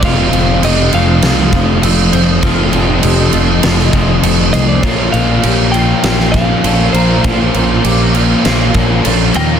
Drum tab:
CC |x-x-x-x-x-x-x-x-|x-x-x-x-x-x-x-x-|x-x-x-x-x-x-x-x-|x-x-x-x-x-x-x-x-|
SD |--------o-------|--------oo------|--------oo------|--------o-------|
BD |o---------o-----|o---------o-----|o---------o-----|o---------o-----|